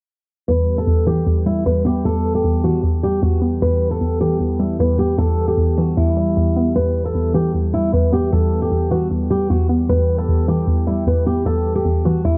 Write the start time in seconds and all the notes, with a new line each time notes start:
0.48 E2 E3 G3 B3 G4 B4
0.78 A4
0.87 E2
1.07 E3 G4
1.27 E2
1.46 G3 E4
1.66 E2 B4
1.85 B3 G4
2.05 E2 A4
2.35 G4
2.44 E2
2.64 E3 F#4
2.83 E2
3.03 G3 G4
3.23 E2 F#4
3.42 B3
3.62 E2 G3 B4
3.91 A4
4.01 E2
4.21 E3 G4
4.40 E2
4.59 G3 E4
4.80 E2 B4
4.99 B3 G4
5.18 E2 A4
5.48 G4
5.58 E2
5.77 E3 F#4
5.97 E2 E4
6.17 G3
6.37 E2
6.56 B3
6.76 E2 B3 B4
7.05 A4
7.15 E2
7.34 E3 G4
7.54 E2
7.74 G3 E4
7.93 E2 B4
8.12 B3 G4
8.32 E2 A4
8.62 G4
8.72 E2
8.91 E3 F#4
9.11 E2
9.30 G3 G4
9.50 E2 F#4
9.69 B3
9.89 E2 E3 G4 B4
10.18 A4
10.29 E2
10.48 E3 G4
10.67 E2
10.87 G3 E4
11.07 E2 B4
11.27 B3 G4
11.46 E2 A4
11.75 G4
11.85 E2
12.05 E3 F#4
12.25 E2 E4